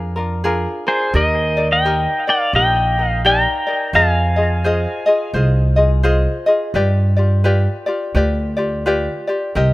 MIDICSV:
0, 0, Header, 1, 4, 480
1, 0, Start_track
1, 0, Tempo, 700935
1, 781, Time_signature, 4, 2, 24, 8
1, 6667, End_track
2, 0, Start_track
2, 0, Title_t, "Pedal steel guitar"
2, 0, Program_c, 0, 26
2, 602, Note_on_c, 0, 72, 78
2, 606, Note_on_c, 0, 68, 59
2, 775, Note_off_c, 0, 68, 0
2, 792, Note_off_c, 0, 72, 0
2, 792, Note_on_c, 0, 70, 64
2, 798, Note_on_c, 0, 75, 88
2, 1146, Note_off_c, 0, 70, 0
2, 1147, Note_off_c, 0, 75, 0
2, 1178, Note_on_c, 0, 75, 62
2, 1181, Note_on_c, 0, 79, 86
2, 1531, Note_off_c, 0, 75, 0
2, 1569, Note_on_c, 0, 74, 69
2, 1571, Note_off_c, 0, 79, 0
2, 1575, Note_on_c, 0, 77, 88
2, 1737, Note_off_c, 0, 74, 0
2, 1744, Note_off_c, 0, 77, 0
2, 1747, Note_on_c, 0, 75, 68
2, 1753, Note_on_c, 0, 79, 103
2, 2115, Note_off_c, 0, 79, 0
2, 2115, Note_on_c, 0, 77, 103
2, 2196, Note_off_c, 0, 75, 0
2, 2223, Note_off_c, 0, 77, 0
2, 2231, Note_on_c, 0, 79, 78
2, 2235, Note_on_c, 0, 82, 100
2, 2678, Note_off_c, 0, 79, 0
2, 2706, Note_on_c, 0, 77, 68
2, 2709, Note_off_c, 0, 82, 0
2, 2711, Note_on_c, 0, 80, 82
2, 3636, Note_off_c, 0, 77, 0
2, 3638, Note_off_c, 0, 80, 0
2, 6667, End_track
3, 0, Start_track
3, 0, Title_t, "Ukulele"
3, 0, Program_c, 1, 24
3, 0, Note_on_c, 1, 62, 68
3, 0, Note_on_c, 1, 65, 72
3, 0, Note_on_c, 1, 68, 72
3, 0, Note_on_c, 1, 70, 80
3, 100, Note_off_c, 1, 70, 0
3, 108, Note_on_c, 1, 70, 58
3, 109, Note_off_c, 1, 65, 0
3, 112, Note_off_c, 1, 68, 0
3, 115, Note_off_c, 1, 62, 0
3, 117, Note_on_c, 1, 65, 59
3, 126, Note_on_c, 1, 62, 52
3, 296, Note_off_c, 1, 62, 0
3, 299, Note_off_c, 1, 65, 0
3, 299, Note_off_c, 1, 70, 0
3, 301, Note_on_c, 1, 68, 82
3, 304, Note_on_c, 1, 62, 79
3, 307, Note_on_c, 1, 65, 89
3, 309, Note_on_c, 1, 70, 86
3, 585, Note_off_c, 1, 70, 0
3, 592, Note_off_c, 1, 68, 0
3, 593, Note_off_c, 1, 65, 0
3, 593, Note_on_c, 1, 70, 51
3, 594, Note_off_c, 1, 62, 0
3, 601, Note_on_c, 1, 65, 53
3, 606, Note_on_c, 1, 62, 42
3, 779, Note_off_c, 1, 65, 0
3, 782, Note_off_c, 1, 70, 0
3, 782, Note_on_c, 1, 67, 69
3, 784, Note_off_c, 1, 62, 0
3, 786, Note_on_c, 1, 63, 72
3, 789, Note_on_c, 1, 70, 75
3, 1071, Note_off_c, 1, 70, 0
3, 1072, Note_off_c, 1, 67, 0
3, 1074, Note_on_c, 1, 74, 62
3, 1075, Note_off_c, 1, 63, 0
3, 1079, Note_on_c, 1, 70, 52
3, 1088, Note_on_c, 1, 63, 45
3, 1262, Note_off_c, 1, 63, 0
3, 1262, Note_off_c, 1, 70, 0
3, 1262, Note_off_c, 1, 74, 0
3, 1265, Note_on_c, 1, 67, 67
3, 1270, Note_on_c, 1, 63, 72
3, 1272, Note_on_c, 1, 70, 76
3, 1553, Note_off_c, 1, 70, 0
3, 1554, Note_off_c, 1, 67, 0
3, 1556, Note_off_c, 1, 63, 0
3, 1556, Note_on_c, 1, 74, 56
3, 1562, Note_on_c, 1, 70, 54
3, 1568, Note_on_c, 1, 63, 46
3, 1743, Note_off_c, 1, 70, 0
3, 1743, Note_off_c, 1, 74, 0
3, 1744, Note_off_c, 1, 63, 0
3, 1746, Note_on_c, 1, 67, 57
3, 1753, Note_on_c, 1, 63, 60
3, 1754, Note_on_c, 1, 70, 61
3, 2034, Note_off_c, 1, 67, 0
3, 2035, Note_off_c, 1, 70, 0
3, 2037, Note_off_c, 1, 63, 0
3, 2043, Note_on_c, 1, 70, 46
3, 2051, Note_on_c, 1, 63, 46
3, 2218, Note_off_c, 1, 63, 0
3, 2220, Note_off_c, 1, 70, 0
3, 2223, Note_on_c, 1, 67, 74
3, 2227, Note_on_c, 1, 63, 73
3, 2230, Note_on_c, 1, 70, 75
3, 2233, Note_on_c, 1, 74, 86
3, 2502, Note_off_c, 1, 74, 0
3, 2511, Note_on_c, 1, 74, 53
3, 2512, Note_off_c, 1, 67, 0
3, 2513, Note_off_c, 1, 70, 0
3, 2514, Note_off_c, 1, 63, 0
3, 2521, Note_on_c, 1, 70, 53
3, 2525, Note_on_c, 1, 63, 45
3, 2695, Note_on_c, 1, 72, 73
3, 2699, Note_off_c, 1, 63, 0
3, 2700, Note_off_c, 1, 74, 0
3, 2701, Note_on_c, 1, 65, 75
3, 2702, Note_off_c, 1, 70, 0
3, 2705, Note_on_c, 1, 68, 82
3, 2705, Note_on_c, 1, 75, 83
3, 2978, Note_off_c, 1, 75, 0
3, 2987, Note_off_c, 1, 68, 0
3, 2987, Note_on_c, 1, 75, 50
3, 2988, Note_off_c, 1, 72, 0
3, 2991, Note_off_c, 1, 65, 0
3, 2996, Note_on_c, 1, 68, 40
3, 3002, Note_on_c, 1, 65, 43
3, 3176, Note_off_c, 1, 68, 0
3, 3177, Note_off_c, 1, 65, 0
3, 3178, Note_off_c, 1, 75, 0
3, 3180, Note_on_c, 1, 72, 69
3, 3185, Note_on_c, 1, 65, 82
3, 3185, Note_on_c, 1, 68, 79
3, 3191, Note_on_c, 1, 75, 87
3, 3456, Note_off_c, 1, 75, 0
3, 3464, Note_on_c, 1, 75, 67
3, 3465, Note_off_c, 1, 68, 0
3, 3471, Note_off_c, 1, 72, 0
3, 3473, Note_off_c, 1, 65, 0
3, 3474, Note_on_c, 1, 68, 59
3, 3481, Note_on_c, 1, 65, 51
3, 3652, Note_off_c, 1, 65, 0
3, 3657, Note_off_c, 1, 68, 0
3, 3657, Note_off_c, 1, 75, 0
3, 3657, Note_on_c, 1, 72, 70
3, 3660, Note_on_c, 1, 65, 65
3, 3665, Note_on_c, 1, 68, 72
3, 3671, Note_on_c, 1, 75, 73
3, 3937, Note_off_c, 1, 75, 0
3, 3944, Note_off_c, 1, 68, 0
3, 3945, Note_on_c, 1, 75, 57
3, 3949, Note_off_c, 1, 72, 0
3, 3951, Note_off_c, 1, 65, 0
3, 3952, Note_on_c, 1, 68, 55
3, 3958, Note_on_c, 1, 65, 52
3, 4128, Note_off_c, 1, 65, 0
3, 4130, Note_off_c, 1, 68, 0
3, 4132, Note_on_c, 1, 72, 92
3, 4134, Note_off_c, 1, 75, 0
3, 4136, Note_on_c, 1, 65, 92
3, 4138, Note_on_c, 1, 68, 88
3, 4142, Note_on_c, 1, 75, 95
3, 4416, Note_off_c, 1, 75, 0
3, 4424, Note_off_c, 1, 68, 0
3, 4425, Note_on_c, 1, 75, 64
3, 4427, Note_off_c, 1, 72, 0
3, 4429, Note_off_c, 1, 65, 0
3, 4432, Note_on_c, 1, 68, 53
3, 4439, Note_on_c, 1, 65, 51
3, 4613, Note_off_c, 1, 65, 0
3, 4616, Note_off_c, 1, 68, 0
3, 4617, Note_off_c, 1, 75, 0
3, 4619, Note_on_c, 1, 71, 78
3, 4621, Note_on_c, 1, 65, 78
3, 4624, Note_on_c, 1, 67, 85
3, 4628, Note_on_c, 1, 74, 92
3, 4898, Note_off_c, 1, 74, 0
3, 4907, Note_on_c, 1, 74, 58
3, 4908, Note_off_c, 1, 67, 0
3, 4910, Note_off_c, 1, 71, 0
3, 4912, Note_off_c, 1, 65, 0
3, 4917, Note_on_c, 1, 67, 57
3, 4923, Note_on_c, 1, 65, 47
3, 5089, Note_off_c, 1, 65, 0
3, 5094, Note_off_c, 1, 67, 0
3, 5095, Note_on_c, 1, 71, 86
3, 5097, Note_on_c, 1, 65, 83
3, 5098, Note_off_c, 1, 74, 0
3, 5102, Note_on_c, 1, 67, 96
3, 5106, Note_on_c, 1, 74, 92
3, 5375, Note_off_c, 1, 74, 0
3, 5384, Note_off_c, 1, 67, 0
3, 5384, Note_on_c, 1, 74, 66
3, 5389, Note_off_c, 1, 71, 0
3, 5390, Note_off_c, 1, 65, 0
3, 5392, Note_on_c, 1, 67, 56
3, 5398, Note_on_c, 1, 65, 58
3, 5576, Note_off_c, 1, 65, 0
3, 5577, Note_off_c, 1, 74, 0
3, 5578, Note_off_c, 1, 67, 0
3, 5579, Note_on_c, 1, 71, 69
3, 5584, Note_on_c, 1, 65, 69
3, 5587, Note_on_c, 1, 67, 74
3, 5592, Note_on_c, 1, 74, 86
3, 5858, Note_off_c, 1, 74, 0
3, 5866, Note_off_c, 1, 67, 0
3, 5866, Note_on_c, 1, 74, 63
3, 5871, Note_off_c, 1, 65, 0
3, 5872, Note_off_c, 1, 71, 0
3, 5874, Note_on_c, 1, 67, 58
3, 5880, Note_on_c, 1, 65, 52
3, 6058, Note_off_c, 1, 65, 0
3, 6059, Note_off_c, 1, 74, 0
3, 6063, Note_off_c, 1, 67, 0
3, 6066, Note_on_c, 1, 65, 84
3, 6066, Note_on_c, 1, 71, 83
3, 6072, Note_on_c, 1, 67, 94
3, 6075, Note_on_c, 1, 74, 93
3, 6343, Note_off_c, 1, 74, 0
3, 6351, Note_on_c, 1, 74, 57
3, 6352, Note_off_c, 1, 67, 0
3, 6355, Note_off_c, 1, 71, 0
3, 6356, Note_off_c, 1, 65, 0
3, 6360, Note_on_c, 1, 67, 64
3, 6366, Note_on_c, 1, 65, 50
3, 6539, Note_off_c, 1, 67, 0
3, 6541, Note_on_c, 1, 70, 73
3, 6542, Note_off_c, 1, 65, 0
3, 6542, Note_off_c, 1, 74, 0
3, 6545, Note_on_c, 1, 60, 85
3, 6548, Note_on_c, 1, 67, 82
3, 6551, Note_on_c, 1, 75, 96
3, 6667, Note_off_c, 1, 60, 0
3, 6667, Note_off_c, 1, 67, 0
3, 6667, Note_off_c, 1, 70, 0
3, 6667, Note_off_c, 1, 75, 0
3, 6667, End_track
4, 0, Start_track
4, 0, Title_t, "Upright bass"
4, 0, Program_c, 2, 32
4, 0, Note_on_c, 2, 41, 94
4, 445, Note_off_c, 2, 41, 0
4, 778, Note_on_c, 2, 39, 100
4, 1403, Note_off_c, 2, 39, 0
4, 1735, Note_on_c, 2, 34, 88
4, 2360, Note_off_c, 2, 34, 0
4, 2693, Note_on_c, 2, 41, 88
4, 3319, Note_off_c, 2, 41, 0
4, 3654, Note_on_c, 2, 36, 97
4, 4280, Note_off_c, 2, 36, 0
4, 4615, Note_on_c, 2, 43, 90
4, 5241, Note_off_c, 2, 43, 0
4, 5578, Note_on_c, 2, 38, 102
4, 6205, Note_off_c, 2, 38, 0
4, 6543, Note_on_c, 2, 36, 97
4, 6667, Note_off_c, 2, 36, 0
4, 6667, End_track
0, 0, End_of_file